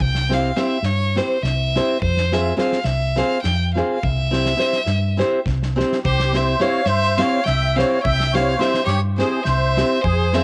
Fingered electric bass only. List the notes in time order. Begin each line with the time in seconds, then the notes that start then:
0.01 C2
0.83 G2
1.43 C2
2.02 F2
2.85 C2
3.44 F2
4.04 C2
4.87 G2
5.47 C2
6.05 C2
6.86 G2
7.48 C2
8.06 C2
8.87 G2
9.47 C2
10.05 F2